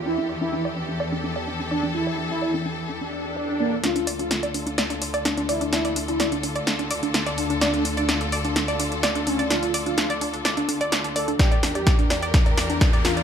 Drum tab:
HH |----------------|----------------|xxoxxxoxxxoxxxox|xxoxxxoxxxoxxxox|
SD |----------------|----------------|o---o---o---o---|o---o---o---o---|
BD |----------------|----------------|----------------|----------------|

HH |xxoxxxoxxxoxxxox|xxoxxxoxxxoxxxox|xxoxxxoxxxoxxxox|
SD |o---o---o---o---|o---o---o---o---|o-o-o-o-o-o-o-o-|
BD |----------------|----------------|o---o---o---o---|